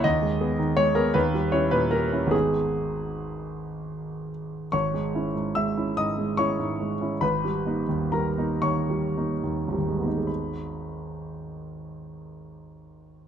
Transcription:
0.04 D#2 D#5
0.22 G#3
0.41 B3 G#4
0.58 D#3
0.77 G#3 C#5
0.95 B3 G#4 A#4
1.14 D#2 B4
1.34 G3
1.52 C#4 E4 C#5
1.71 A#2 B4
1.91 G3 A#4
2.12 C#4 E4
2.27 G#1 G#3 B3 D#4
2.31 G#4
4.72 G#1 C#5 C#6
4.94 G#3
5.15 C#4 E4
5.35 G#2
5.55 G#3 E5 E6
5.77 C#4 E4
5.97 G#2 D#5 D#6
6.18 G#3
6.37 C#4 E4 C#5 C#6
6.59 G#2
6.80 G#3
7.01 C#4 E4
7.21 G#1 B4 B5
7.45 G3
7.66 A#3 D#4
7.89 D#2
8.12 G3 A#4 A#5
8.38 A#3 D#4
8.62 D#2 C#5 C#6
8.90 G3
9.17 A#3 D#4
9.44 D#2
9.68 G#1
9.73 G3
9.78 D#2
9.88 G#3
9.98 A#3 B3
10.02 D#4
10.08 D#4
10.18 G#4
10.27 B5

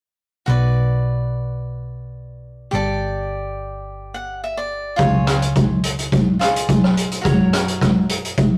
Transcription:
0.46 B1 F#4 B4 D5
2.71 G1 G4 A4 D5
4.14 F#5
4.44 E5
4.57 D5
4.96 C#2 F4 G#4, kick, closed hi-hat
5.00 C#5
5.27 cross-stick, closed hi-hat
5.42 closed hi-hat
5.56 kick, closed hi-hat
5.83 closed hi-hat
5.99 closed hi-hat
6.12 kick, closed hi-hat
6.39 F4 G#4 D#5, cross-stick, closed hi-hat
6.56 closed hi-hat
6.69 kick, closed hi-hat
6.84 cross-stick
6.97 closed hi-hat
7.11 closed hi-hat
7.21 F#2 F#4 A#4, kick, closed hi-hat
7.26 C#5
7.53 cross-stick, closed hi-hat
7.68 closed hi-hat
7.81 kick, cross-stick, closed hi-hat
8.09 closed hi-hat
8.25 closed hi-hat
8.37 kick, closed hi-hat

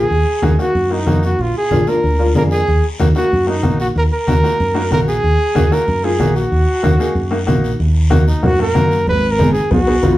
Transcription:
Already playing: G#4
0.11 D#2, high conga, long guiro
0.42 D#2 A#3 D#4 F#4, high conga, short guiro
0.59 A#3 D#4 F#4, short guiro
0.74 F#2, high conga, long guiro
0.90 A#3 D#4 F#4
1.06 F2 A#3 D#4 F#4, high conga, short guiro
1.23 F#4, short guiro
1.39 A#1 F4, high conga, long guiro
1.57 G#4
1.71 A#1 A#3 D4 F4, high conga, short guiro
1.87 A#3 D4 F4 A#4, short guiro
2.03 D2, high conga, long guiro
2.19 A#3 D4 F4
2.35 F2 A#3 D4 G#4 A#4, high conga, short guiro
2.51 G#4, short guiro
2.68 D#2, high conga, long guiro
2.99 D#2 A#3 D#4 F#4, high conga, short guiro
3.15 A#3 D#4 F#4, short guiro
3.32 F#2, high conga, long guiro
3.47 A#3 D#4 F#4
3.63 A#1 A#3 D#4 F#4, high conga, short guiro
3.80 F#4, short guiro
3.95 D#2 A#4, high conga, long guiro
4.13 A#4
4.27 D#2 A#3 D#4 F#4, high conga, short guiro
4.43 A#3 D#4 F#4, short guiro
4.60 F#2, high conga, long guiro
4.74 A#3 D#4 F#4
4.91 A#1 A#3 D#4 F#4 A#4, high conga, short guiro
5.08 G#4, short guiro
5.23 D#2, high conga, long guiro
5.55 D#2 A#3 D#4 F#4, high conga, short guiro
5.71 A#3 D#4 F#4 A#4, short guiro
5.88 F#2, high conga, long guiro
6.03 A#3 D#4 F4 G#4
6.19 A#1 A#3 D#4 F#4, high conga, short guiro
6.36 F#4, short guiro
6.52 D#2, high conga, long guiro
6.83 D#2 A#3 D#4 F#4, high conga, short guiro
6.99 A#3 D#4 G#4, short guiro
7.15 F#2, high conga, long guiro
7.31 A#3 D#4 F#4
7.47 A#1 A#3 D#4 F#4, high conga, short guiro
7.64 short guiro
7.80 D#2, high conga, long guiro
8.10 A#3 D#4 F#4, high conga, short guiro
8.28 D#4, short guiro
8.43 F#2 A#3 D#4 F#4, high conga, low conga, long guiro
8.59 A#3 D#4 F#4 A#4
8.74 F#2 A#3 D#4 F#4, high conga, short guiro
8.91 short guiro
9.07 G#1 B4, high conga, low conga, long guiro
9.31 A#4
9.39 B3 D#4 G#4, high conga, short guiro
9.53 G#4, short guiro
9.71 B1 B3 D#4 F#4 G#4, high conga, low conga, long guiro
9.87 B3 D#4 G#4
10.03 B1 B3 D#4 F4, high conga, short guiro

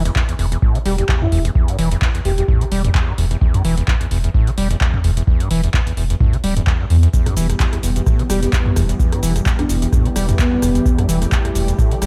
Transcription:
0.05 E2, closed hi-hat
0.16 E2, kick, clap
0.29 E2, closed hi-hat
0.39 E1 E2, open hi-hat
0.52 E2, closed hi-hat
0.62 A2, kick
0.75 D3, closed hi-hat
0.86 E1 G3 G4, open hi-hat
0.98 E2 G4, closed hi-hat
1.09 E2, kick, clap
1.22 G2 E4, mid tom
1.32 E1 E2 E4, open hi-hat
1.45 E2, closed hi-hat
1.55 E2, kick
1.68 G2, closed hi-hat
1.79 E1 E3, open hi-hat
1.92 E2, closed hi-hat
2.02 E2, kick, clap
2.15 E2, closed hi-hat
2.25 E1 E2 G4, open hi-hat
2.38 E2 G4, closed hi-hat
2.48 A2, kick, mid tom
2.61 D3, closed hi-hat
2.72 E1 G3, open hi-hat
2.85 E2, closed hi-hat, mid tom
2.95 E2, kick, clap
3.08 G2
3.18 E1 E2, open hi-hat
3.31 E2, closed hi-hat
3.41 E2, kick
3.54 G2, closed hi-hat, mid tom
3.65 E1 E3, open hi-hat
3.78 E2, closed hi-hat
3.88 E2, kick, clap
4.01 E2, closed hi-hat
4.11 E1 E2, open hi-hat
4.24 E2, closed hi-hat
4.34 A2, kick
4.47 D3, closed hi-hat
4.58 E1 G3, open hi-hat
4.71 E2, closed hi-hat
4.81 E2, kick, clap
4.94 G2, mid tom
5.04 E1 E2, open hi-hat
5.17 E2, closed hi-hat
5.27 E2, kick
5.40 G2, closed hi-hat
5.51 E1 E3, open hi-hat
5.64 E2, closed hi-hat
5.74 E2, kick, clap
5.87 E2, closed hi-hat
5.97 E1 E2, open hi-hat
6.10 E2, closed hi-hat
6.20 A2, kick, mid tom
6.33 D3, closed hi-hat
6.44 D1 G3, open hi-hat
6.57 E2, closed hi-hat, mid tom
6.67 E2, kick, clap
6.80 G2
6.90 E2, open hi-hat
7.03 E2, closed hi-hat
7.13 E2 E3 G3 B3 G4, kick, cabasa
7.26 G2, cross-stick, closed hi-hat, mid tom
7.37 E1 E3, open hi-hat, cabasa
7.50 E2, cross-stick, closed hi-hat, cabasa
7.60 E2, kick, clap, cabasa
7.73 E2, cross-stick, closed hi-hat
7.83 E1 E2, open hi-hat, cabasa
7.96 E2, closed hi-hat, cabasa
8.06 A2, kick, cross-stick, cabasa
8.19 D3, closed hi-hat
8.30 E1 G3 G4, cross-stick, open hi-hat, cabasa
8.43 E2 G4, closed hi-hat, cabasa
8.53 E2, kick, cross-stick, clap, cabasa
8.66 G2, mid tom
8.76 E1 E2, cross-stick, open hi-hat, cabasa
8.89 E2, closed hi-hat, cabasa
9.00 E2, kick, cabasa
9.12 G2, cross-stick, closed hi-hat
9.23 E1 E3, open hi-hat, cabasa
9.36 E2, cross-stick, closed hi-hat, cabasa
9.46 E2, kick, clap, cabasa
9.59 E2 D4, cross-stick, closed hi-hat
9.69 E1 E2, open hi-hat, cabasa
9.82 E2, closed hi-hat, cabasa
9.93 A2, kick, cross-stick, mid tom, cabasa
10.05 D3, closed hi-hat
10.16 E1 G3, cross-stick, open hi-hat, cabasa
10.29 E2, closed hi-hat, mid tom, cabasa
10.39 E2 B3, kick, cross-stick, clap, cabasa
10.52 G2
10.62 E1 E2, cross-stick, open hi-hat, cabasa
10.75 E2, closed hi-hat, cabasa
10.86 E2 A3, kick, cabasa
10.98 G2, cross-stick, closed hi-hat, mid tom
11.09 E1 E3, open hi-hat, cabasa
11.22 E2, cross-stick, closed hi-hat, cabasa
11.32 E2, kick, clap, cabasa
11.45 E2, cross-stick, closed hi-hat
11.55 E1 E2, open hi-hat, cabasa
11.68 E2, closed hi-hat, cabasa
11.79 A2, kick, cross-stick, cabasa
11.91 D3, closed hi-hat
12.02 E1 G3, cross-stick, open hi-hat, cabasa

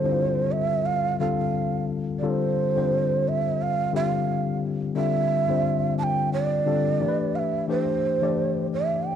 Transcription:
Already playing: D3 G3 C4 F4 A4 C5
0.04 D3 G3 C4 E4 C5
0.12 F4
0.52 E5
0.86 F5
1.20 D3 G3 C4 F4 A4 F5
2.19 D3 G3 D5
2.23 C4 F4 A4 C#5
2.30 C5
2.76 D3 G3 C4 F4 C5
3.28 E5
3.62 F5
3.93 D3 G3 C4 F4 G4 F5
4.95 D3 G3 C4 F4 A4 E5
5.48 D3 G3 C4 F4 C5
5.99 A5
6.04 G5
6.33 D5
6.66 D3 G3 C4 F4 A4
7.00 E3 A3 D4 G4 A#4
7.08 B4
7.36 E5 F5
7.68 E3 A3 D4 G4 C5
8.21 E3 A3 D4 G4 D5
8.73 E5
9.07 G5

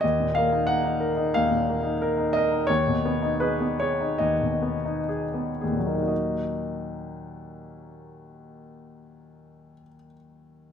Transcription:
0.01 D#2 D#5
0.20 A#2
0.35 A#3 F5
0.52 D#4
0.67 A#4 F#5
0.84 D#4
1.00 A#4
1.17 D#4
1.34 D#2 F5
1.51 A#2
1.69 A#3
1.83 D#4
2.02 A#4
2.17 D#4
2.33 A#4 D#5
2.52 D#4
2.67 D#2 C#5
2.87 B2
3.05 B3
3.22 D#4
3.40 G#4 B4
3.60 B3
3.80 G#4 C#5
4.01 D#4
4.18 D#2 D#5
4.41 B2
4.62 B3
4.85 D#4
5.09 G#4
5.34 B3
5.61 D#2 G#4
5.72 A#2
5.79 F#3
5.86 A#3 D#4
5.95 D#4
6.02 F#4
6.08 D#5

